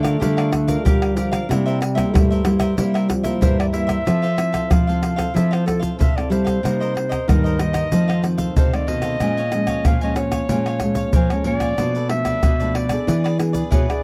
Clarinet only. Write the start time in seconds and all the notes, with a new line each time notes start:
3.42 C5
3.59 D5
3.73 E5
4.71 F5
5.35 E5
5.53 C5
5.66 A4
5.99 E5
6.16 D5
6.31 C5
7.28 A#4
7.60 D#5
8.58 C5
8.75 D5
8.88 D#5
9.86 F5
10.04 D#5
10.17 C#5
11.15 C5
11.32 C#5
11.46 D5
12.10 E5
12.75 D5
13.73 C#5
13.89 D5